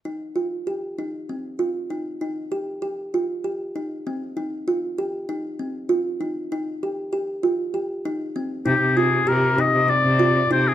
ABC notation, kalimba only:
X:1
M:7/8
L:1/8
Q:1/4=98
K:Cm
V:1 name="Kalimba"
E F G E C F E | E G G F G E C | E F G E C F E | E G G F G E C |
E F G E C F E |]